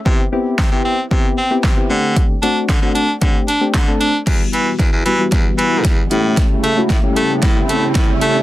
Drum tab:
CC |--------|--------|x-------|--------|
HH |--------|xxxxxxxx|xxxxxxxx|xxxxxxxx|
CP |--x---x-|--x---x-|--------|--------|
SD |--o---o-|--o---o-|o-o-o-o-|o-o-o-o-|
BD |o-o-o-o-|o-o-o-o-|o-o-o-o-|o-o-o-o-|